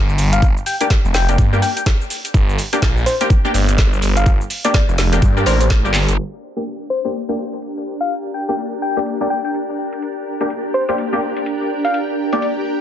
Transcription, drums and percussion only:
0.09 cabasa soft
0.18 open hi-hat loud
0.18 cabasa medium
0.33 closed hi-hat medium
0.33 cabasa soft
0.42 kick loud
0.42 closed hi-hat medium
0.42 cabasa soft
0.57 cabasa soft
0.66 open hi-hat loud
0.66 cabasa medium
0.81 closed hi-hat medium
0.81 cabasa soft
0.90 kick loud
0.90 snare loud
0.90 closed hi-hat medium
0.90 cabasa soft
1.05 cabasa soft
1.14 snare medium
1.14 open hi-hat loud
1.14 cabasa medium
1.29 closed hi-hat medium
1.29 cabasa soft
1.38 kick loud
1.38 closed hi-hat medium
1.38 cabasa soft
1.53 cabasa soft
1.62 open hi-hat loud
1.62 cabasa medium
1.77 closed hi-hat medium
1.77 cabasa soft
1.86 kick loud
1.86 snare loud
1.86 closed hi-hat medium
1.86 cabasa soft
2.01 cabasa soft
2.10 open hi-hat loud
2.10 cabasa medium
2.25 closed hi-hat medium
2.25 cabasa soft
2.34 kick loud
2.34 closed hi-hat medium
2.34 cabasa soft
2.49 cabasa soft
2.58 open hi-hat loud
2.58 cabasa medium
2.73 closed hi-hat medium
2.73 cabasa soft
2.82 kick loud
2.82 snare loud
2.82 closed hi-hat medium
2.82 cabasa soft
2.97 cabasa soft
3.06 open hi-hat loud
3.06 cabasa medium
3.21 closed hi-hat medium
3.21 cabasa soft
3.30 kick loud
3.30 closed hi-hat medium
3.30 cabasa soft
3.45 cabasa soft
3.54 open hi-hat loud
3.54 cabasa medium
3.69 closed hi-hat medium
3.69 cabasa soft
3.78 kick loud
3.78 snare loud
3.78 closed hi-hat medium
3.78 cabasa soft
3.93 cabasa soft
4.02 open hi-hat loud
4.02 cabasa medium
4.17 closed hi-hat medium
4.17 cabasa soft
4.26 kick loud
4.26 closed hi-hat medium
4.26 cabasa soft
4.41 cabasa soft
4.50 open hi-hat loud
4.50 cabasa medium
4.65 closed hi-hat medium
4.65 cabasa soft
4.74 kick loud
4.74 snare loud
4.74 closed hi-hat medium
4.74 cabasa soft
4.89 cabasa soft
4.98 snare medium
4.98 open hi-hat loud
4.98 cabasa medium
5.13 closed hi-hat medium
5.13 cabasa soft
5.22 kick loud
5.22 closed hi-hat medium
5.22 cabasa soft
5.37 cabasa soft
5.46 open hi-hat loud
5.46 cabasa medium
5.61 closed hi-hat medium
5.61 cabasa soft
5.70 kick loud
5.70 snare loud
5.70 closed hi-hat medium
5.70 cabasa soft
5.85 cabasa soft
5.94 clap medium
5.94 open hi-hat loud
5.94 cabasa medium
6.09 closed hi-hat medium
6.09 cabasa soft
6.57 closed hi-hat medium
6.66 closed hi-hat soft
7.05 closed hi-hat medium
7.14 closed hi-hat medium
7.53 closed hi-hat medium
7.62 closed hi-hat medium
8.01 closed hi-hat medium
8.10 closed hi-hat soft
8.49 closed hi-hat medium
8.58 closed hi-hat soft
8.97 closed hi-hat medium
9.06 closed hi-hat soft
9.45 closed hi-hat medium
9.54 closed hi-hat soft
9.93 closed hi-hat medium
10.02 closed hi-hat soft
10.41 closed hi-hat medium
10.50 closed hi-hat soft
10.89 closed hi-hat medium
10.98 closed hi-hat soft
11.37 closed hi-hat medium
11.46 closed hi-hat soft
11.85 closed hi-hat medium
11.94 closed hi-hat soft
12.33 closed hi-hat medium
12.42 closed hi-hat soft

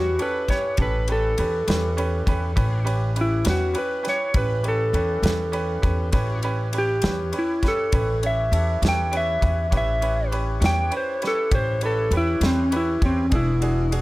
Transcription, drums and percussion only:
0.19 ride medium
0.48 kick medium
0.48 snare soft
0.48 ride soft
0.77 kick loud
0.77 ride medium
1.08 ride medium
1.38 ride medium
1.68 snare medium
1.68 ride medium
1.98 ride medium
2.27 kick medium
2.27 ride medium
2.57 kick medium
2.57 ride medium
2.87 ride medium
3.16 ride medium
3.45 snare loud
3.45 ride medium
3.75 ride medium
4.05 snare soft
4.05 ride medium
4.34 kick loud
4.34 ride medium
4.64 ride medium
4.94 ride medium
5.23 snare medium
5.23 ride medium
5.53 ride soft
5.83 kick medium
5.83 ride medium
6.13 kick loud
6.13 ride medium
6.43 ride medium
6.73 ride medium
7.02 snare loud
7.02 ride medium
7.33 ride medium
7.63 kick medium
7.63 snare soft
7.63 ride medium
7.92 kick loud
7.92 ride medium
8.23 ride medium
8.53 ride medium
8.83 snare medium
8.83 ride medium
9.13 ride medium
9.42 kick medium
9.42 ride medium
9.72 kick medium
9.72 ride medium
10.02 ride medium
10.32 ride medium
10.62 snare loud
10.62 ride medium
10.92 ride soft
11.22 snare soft
11.22 ride medium
11.52 kick loud
11.52 ride medium
11.81 ride medium
12.11 ride medium
12.41 snare medium
12.41 ride medium
12.72 ride medium
13.02 kick medium
13.02 ride medium
13.32 kick loud
13.32 ride medium
13.62 ride medium
13.92 ride medium

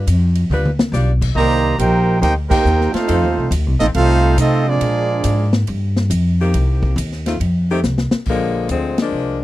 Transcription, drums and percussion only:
0.07 hi-hat pedal medium
0.07 ride medium
0.35 ride medium
0.51 mid tom medium
0.65 mid tom medium
0.79 snare loud
0.93 snare medium
0.93 hi-hat pedal medium
1.22 kick medium
1.22 crash medium
1.79 hi-hat pedal medium
1.79 ride medium
2.23 ride medium
2.51 kick loud
2.51 crash medium
2.66 hi-hat pedal medium
2.81 snare soft
2.94 snare medium
2.94 ride medium
3.09 ride medium
3.52 hi-hat pedal medium
3.52 ride medium
3.80 snare soft
3.80 ride medium
3.94 ride medium
4.38 hi-hat pedal medium
4.38 ride medium
4.81 ride medium
5.24 hi-hat pedal medium
5.24 ride medium
5.53 snare medium
5.67 ride medium
5.96 snare medium
6.10 hi-hat pedal medium
6.10 ride medium
6.54 ride medium
6.83 kick medium
6.98 hi-hat pedal medium
6.98 ride medium
7.12 snare soft
7.26 snare medium
7.26 ride medium
7.41 ride medium
7.83 snare medium
7.83 hi-hat pedal medium
7.98 snare medium
8.11 snare medium
8.26 kick medium
8.26 crash medium
8.69 hi-hat pedal medium
8.69 ride medium
8.98 snare medium
8.98 ride medium

